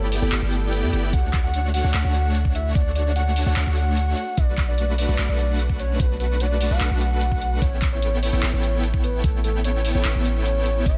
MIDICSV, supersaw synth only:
0, 0, Header, 1, 2, 480
1, 0, Start_track
1, 0, Tempo, 405405
1, 1339, Time_signature, 4, 2, 24, 8
1, 12998, End_track
2, 0, Start_track
2, 0, Title_t, "Supersaw synth"
2, 0, Program_c, 0, 81
2, 0, Note_on_c, 0, 59, 76
2, 0, Note_on_c, 0, 64, 70
2, 0, Note_on_c, 0, 67, 73
2, 0, Note_on_c, 0, 74, 71
2, 0, Note_on_c, 0, 79, 84
2, 232, Note_off_c, 0, 59, 0
2, 232, Note_off_c, 0, 64, 0
2, 232, Note_off_c, 0, 67, 0
2, 232, Note_off_c, 0, 74, 0
2, 232, Note_off_c, 0, 79, 0
2, 259, Note_on_c, 0, 79, 92
2, 260, Note_on_c, 0, 59, 84
2, 260, Note_on_c, 0, 67, 74
2, 260, Note_on_c, 0, 74, 74
2, 261, Note_on_c, 0, 64, 75
2, 350, Note_off_c, 0, 59, 0
2, 350, Note_off_c, 0, 64, 0
2, 350, Note_off_c, 0, 67, 0
2, 350, Note_off_c, 0, 74, 0
2, 350, Note_off_c, 0, 79, 0
2, 377, Note_on_c, 0, 59, 100
2, 377, Note_on_c, 0, 74, 91
2, 378, Note_on_c, 0, 64, 92
2, 378, Note_on_c, 0, 67, 94
2, 378, Note_on_c, 0, 79, 114
2, 471, Note_off_c, 0, 59, 0
2, 471, Note_off_c, 0, 64, 0
2, 471, Note_off_c, 0, 67, 0
2, 471, Note_off_c, 0, 74, 0
2, 471, Note_off_c, 0, 79, 0
2, 499, Note_on_c, 0, 59, 92
2, 499, Note_on_c, 0, 67, 85
2, 499, Note_on_c, 0, 74, 86
2, 499, Note_on_c, 0, 79, 106
2, 500, Note_on_c, 0, 64, 85
2, 956, Note_off_c, 0, 59, 0
2, 956, Note_off_c, 0, 64, 0
2, 956, Note_off_c, 0, 67, 0
2, 956, Note_off_c, 0, 74, 0
2, 956, Note_off_c, 0, 79, 0
2, 979, Note_on_c, 0, 64, 88
2, 979, Note_on_c, 0, 67, 89
2, 979, Note_on_c, 0, 74, 88
2, 979, Note_on_c, 0, 79, 109
2, 980, Note_on_c, 0, 59, 96
2, 1070, Note_off_c, 0, 59, 0
2, 1070, Note_off_c, 0, 64, 0
2, 1070, Note_off_c, 0, 67, 0
2, 1070, Note_off_c, 0, 74, 0
2, 1070, Note_off_c, 0, 79, 0
2, 1097, Note_on_c, 0, 59, 88
2, 1097, Note_on_c, 0, 64, 79
2, 1097, Note_on_c, 0, 67, 80
2, 1097, Note_on_c, 0, 74, 78
2, 1097, Note_on_c, 0, 79, 94
2, 1310, Note_off_c, 0, 59, 0
2, 1310, Note_off_c, 0, 64, 0
2, 1310, Note_off_c, 0, 67, 0
2, 1310, Note_off_c, 0, 74, 0
2, 1310, Note_off_c, 0, 79, 0
2, 1338, Note_on_c, 0, 62, 70
2, 1338, Note_on_c, 0, 66, 72
2, 1338, Note_on_c, 0, 78, 84
2, 1339, Note_on_c, 0, 57, 77
2, 1339, Note_on_c, 0, 73, 70
2, 2151, Note_off_c, 0, 62, 0
2, 2151, Note_off_c, 0, 66, 0
2, 2151, Note_off_c, 0, 78, 0
2, 2152, Note_off_c, 0, 57, 0
2, 2152, Note_off_c, 0, 73, 0
2, 2179, Note_on_c, 0, 57, 81
2, 2179, Note_on_c, 0, 62, 76
2, 2179, Note_on_c, 0, 66, 74
2, 2179, Note_on_c, 0, 73, 72
2, 2179, Note_on_c, 0, 78, 89
2, 2269, Note_off_c, 0, 73, 0
2, 2270, Note_off_c, 0, 57, 0
2, 2270, Note_off_c, 0, 62, 0
2, 2270, Note_off_c, 0, 66, 0
2, 2270, Note_off_c, 0, 78, 0
2, 2297, Note_on_c, 0, 62, 92
2, 2298, Note_on_c, 0, 57, 99
2, 2298, Note_on_c, 0, 66, 91
2, 2298, Note_on_c, 0, 73, 91
2, 2298, Note_on_c, 0, 78, 111
2, 2391, Note_off_c, 0, 57, 0
2, 2391, Note_off_c, 0, 62, 0
2, 2391, Note_off_c, 0, 66, 0
2, 2391, Note_off_c, 0, 73, 0
2, 2391, Note_off_c, 0, 78, 0
2, 2420, Note_on_c, 0, 57, 93
2, 2420, Note_on_c, 0, 62, 85
2, 2420, Note_on_c, 0, 66, 87
2, 2420, Note_on_c, 0, 73, 88
2, 2420, Note_on_c, 0, 78, 102
2, 3230, Note_off_c, 0, 57, 0
2, 3230, Note_off_c, 0, 62, 0
2, 3230, Note_off_c, 0, 66, 0
2, 3230, Note_off_c, 0, 73, 0
2, 3230, Note_off_c, 0, 78, 0
2, 3259, Note_on_c, 0, 57, 75
2, 3259, Note_on_c, 0, 62, 69
2, 3259, Note_on_c, 0, 73, 71
2, 3259, Note_on_c, 0, 78, 84
2, 3260, Note_on_c, 0, 66, 73
2, 4072, Note_off_c, 0, 57, 0
2, 4072, Note_off_c, 0, 62, 0
2, 4072, Note_off_c, 0, 66, 0
2, 4072, Note_off_c, 0, 73, 0
2, 4072, Note_off_c, 0, 78, 0
2, 4101, Note_on_c, 0, 57, 83
2, 4101, Note_on_c, 0, 66, 74
2, 4101, Note_on_c, 0, 73, 73
2, 4101, Note_on_c, 0, 78, 87
2, 4102, Note_on_c, 0, 62, 76
2, 4191, Note_off_c, 0, 57, 0
2, 4191, Note_off_c, 0, 62, 0
2, 4191, Note_off_c, 0, 66, 0
2, 4191, Note_off_c, 0, 73, 0
2, 4191, Note_off_c, 0, 78, 0
2, 4219, Note_on_c, 0, 57, 104
2, 4219, Note_on_c, 0, 62, 91
2, 4219, Note_on_c, 0, 73, 91
2, 4219, Note_on_c, 0, 78, 110
2, 4220, Note_on_c, 0, 66, 89
2, 4312, Note_off_c, 0, 57, 0
2, 4312, Note_off_c, 0, 62, 0
2, 4312, Note_off_c, 0, 66, 0
2, 4312, Note_off_c, 0, 73, 0
2, 4312, Note_off_c, 0, 78, 0
2, 4340, Note_on_c, 0, 62, 86
2, 4341, Note_on_c, 0, 57, 94
2, 4341, Note_on_c, 0, 66, 86
2, 4341, Note_on_c, 0, 73, 86
2, 4341, Note_on_c, 0, 78, 104
2, 4924, Note_off_c, 0, 62, 0
2, 4925, Note_off_c, 0, 57, 0
2, 4925, Note_off_c, 0, 66, 0
2, 4925, Note_off_c, 0, 73, 0
2, 4925, Note_off_c, 0, 78, 0
2, 5178, Note_on_c, 0, 62, 70
2, 5178, Note_on_c, 0, 66, 74
2, 5179, Note_on_c, 0, 57, 79
2, 5179, Note_on_c, 0, 71, 70
2, 5179, Note_on_c, 0, 78, 88
2, 5992, Note_off_c, 0, 57, 0
2, 5992, Note_off_c, 0, 62, 0
2, 5992, Note_off_c, 0, 66, 0
2, 5992, Note_off_c, 0, 71, 0
2, 5992, Note_off_c, 0, 78, 0
2, 6021, Note_on_c, 0, 62, 73
2, 6021, Note_on_c, 0, 71, 74
2, 6021, Note_on_c, 0, 78, 89
2, 6022, Note_on_c, 0, 57, 82
2, 6022, Note_on_c, 0, 66, 72
2, 6111, Note_off_c, 0, 57, 0
2, 6111, Note_off_c, 0, 62, 0
2, 6111, Note_off_c, 0, 66, 0
2, 6111, Note_off_c, 0, 71, 0
2, 6111, Note_off_c, 0, 78, 0
2, 6138, Note_on_c, 0, 62, 91
2, 6138, Note_on_c, 0, 71, 92
2, 6139, Note_on_c, 0, 57, 101
2, 6139, Note_on_c, 0, 66, 92
2, 6139, Note_on_c, 0, 78, 109
2, 6231, Note_off_c, 0, 62, 0
2, 6232, Note_off_c, 0, 57, 0
2, 6232, Note_off_c, 0, 66, 0
2, 6232, Note_off_c, 0, 71, 0
2, 6232, Note_off_c, 0, 78, 0
2, 6259, Note_on_c, 0, 66, 87
2, 6260, Note_on_c, 0, 57, 94
2, 6260, Note_on_c, 0, 62, 85
2, 6260, Note_on_c, 0, 71, 88
2, 6260, Note_on_c, 0, 78, 101
2, 7070, Note_off_c, 0, 57, 0
2, 7070, Note_off_c, 0, 62, 0
2, 7070, Note_off_c, 0, 66, 0
2, 7070, Note_off_c, 0, 71, 0
2, 7070, Note_off_c, 0, 78, 0
2, 7098, Note_on_c, 0, 71, 71
2, 7099, Note_on_c, 0, 66, 69
2, 7911, Note_off_c, 0, 71, 0
2, 7912, Note_off_c, 0, 66, 0
2, 7940, Note_on_c, 0, 66, 72
2, 7941, Note_on_c, 0, 57, 79
2, 7941, Note_on_c, 0, 62, 72
2, 7941, Note_on_c, 0, 71, 76
2, 7941, Note_on_c, 0, 78, 89
2, 8030, Note_off_c, 0, 57, 0
2, 8030, Note_off_c, 0, 66, 0
2, 8030, Note_off_c, 0, 71, 0
2, 8030, Note_off_c, 0, 78, 0
2, 8031, Note_off_c, 0, 62, 0
2, 8057, Note_on_c, 0, 62, 94
2, 8057, Note_on_c, 0, 71, 92
2, 8058, Note_on_c, 0, 57, 101
2, 8058, Note_on_c, 0, 66, 91
2, 8058, Note_on_c, 0, 78, 109
2, 8151, Note_off_c, 0, 57, 0
2, 8151, Note_off_c, 0, 62, 0
2, 8151, Note_off_c, 0, 66, 0
2, 8151, Note_off_c, 0, 71, 0
2, 8151, Note_off_c, 0, 78, 0
2, 8179, Note_on_c, 0, 71, 83
2, 8179, Note_on_c, 0, 78, 102
2, 8180, Note_on_c, 0, 57, 96
2, 8180, Note_on_c, 0, 62, 86
2, 8180, Note_on_c, 0, 66, 87
2, 8990, Note_off_c, 0, 57, 0
2, 8990, Note_off_c, 0, 62, 0
2, 8990, Note_off_c, 0, 66, 0
2, 8990, Note_off_c, 0, 71, 0
2, 8990, Note_off_c, 0, 78, 0
2, 9018, Note_on_c, 0, 59, 79
2, 9018, Note_on_c, 0, 64, 73
2, 9018, Note_on_c, 0, 69, 72
2, 9018, Note_on_c, 0, 73, 71
2, 9018, Note_on_c, 0, 79, 85
2, 9831, Note_off_c, 0, 59, 0
2, 9831, Note_off_c, 0, 64, 0
2, 9831, Note_off_c, 0, 69, 0
2, 9831, Note_off_c, 0, 73, 0
2, 9832, Note_off_c, 0, 79, 0
2, 9860, Note_on_c, 0, 59, 81
2, 9860, Note_on_c, 0, 64, 74
2, 9860, Note_on_c, 0, 69, 76
2, 9860, Note_on_c, 0, 73, 76
2, 9860, Note_on_c, 0, 79, 88
2, 9950, Note_off_c, 0, 59, 0
2, 9950, Note_off_c, 0, 64, 0
2, 9950, Note_off_c, 0, 69, 0
2, 9950, Note_off_c, 0, 73, 0
2, 9950, Note_off_c, 0, 79, 0
2, 9977, Note_on_c, 0, 59, 103
2, 9977, Note_on_c, 0, 64, 90
2, 9977, Note_on_c, 0, 69, 92
2, 9977, Note_on_c, 0, 73, 92
2, 9977, Note_on_c, 0, 79, 114
2, 10071, Note_off_c, 0, 59, 0
2, 10071, Note_off_c, 0, 64, 0
2, 10071, Note_off_c, 0, 69, 0
2, 10071, Note_off_c, 0, 73, 0
2, 10071, Note_off_c, 0, 79, 0
2, 10098, Note_on_c, 0, 59, 96
2, 10098, Note_on_c, 0, 69, 88
2, 10098, Note_on_c, 0, 73, 86
2, 10099, Note_on_c, 0, 64, 85
2, 10099, Note_on_c, 0, 79, 103
2, 10909, Note_off_c, 0, 69, 0
2, 10909, Note_off_c, 0, 73, 0
2, 10910, Note_off_c, 0, 59, 0
2, 10910, Note_off_c, 0, 64, 0
2, 10910, Note_off_c, 0, 79, 0
2, 10936, Note_on_c, 0, 69, 71
2, 10936, Note_on_c, 0, 79, 85
2, 10937, Note_on_c, 0, 59, 79
2, 10937, Note_on_c, 0, 64, 72
2, 10937, Note_on_c, 0, 73, 72
2, 11750, Note_off_c, 0, 79, 0
2, 11751, Note_off_c, 0, 59, 0
2, 11751, Note_off_c, 0, 64, 0
2, 11751, Note_off_c, 0, 69, 0
2, 11751, Note_off_c, 0, 73, 0
2, 11779, Note_on_c, 0, 64, 73
2, 11779, Note_on_c, 0, 79, 91
2, 11780, Note_on_c, 0, 59, 83
2, 11780, Note_on_c, 0, 69, 74
2, 11780, Note_on_c, 0, 73, 77
2, 11870, Note_off_c, 0, 59, 0
2, 11870, Note_off_c, 0, 64, 0
2, 11870, Note_off_c, 0, 69, 0
2, 11870, Note_off_c, 0, 73, 0
2, 11870, Note_off_c, 0, 79, 0
2, 11895, Note_on_c, 0, 73, 94
2, 11895, Note_on_c, 0, 79, 109
2, 11896, Note_on_c, 0, 59, 99
2, 11896, Note_on_c, 0, 64, 91
2, 11896, Note_on_c, 0, 69, 90
2, 11990, Note_off_c, 0, 59, 0
2, 11990, Note_off_c, 0, 64, 0
2, 11990, Note_off_c, 0, 69, 0
2, 11990, Note_off_c, 0, 73, 0
2, 11990, Note_off_c, 0, 79, 0
2, 12018, Note_on_c, 0, 59, 96
2, 12018, Note_on_c, 0, 64, 86
2, 12018, Note_on_c, 0, 69, 86
2, 12018, Note_on_c, 0, 73, 88
2, 12019, Note_on_c, 0, 79, 106
2, 12829, Note_off_c, 0, 59, 0
2, 12829, Note_off_c, 0, 64, 0
2, 12829, Note_off_c, 0, 69, 0
2, 12829, Note_off_c, 0, 73, 0
2, 12829, Note_off_c, 0, 79, 0
2, 12855, Note_on_c, 0, 74, 69
2, 12856, Note_on_c, 0, 59, 78
2, 12856, Note_on_c, 0, 64, 71
2, 12856, Note_on_c, 0, 79, 88
2, 12857, Note_on_c, 0, 67, 74
2, 12998, Note_off_c, 0, 59, 0
2, 12998, Note_off_c, 0, 64, 0
2, 12998, Note_off_c, 0, 67, 0
2, 12998, Note_off_c, 0, 74, 0
2, 12998, Note_off_c, 0, 79, 0
2, 12998, End_track
0, 0, End_of_file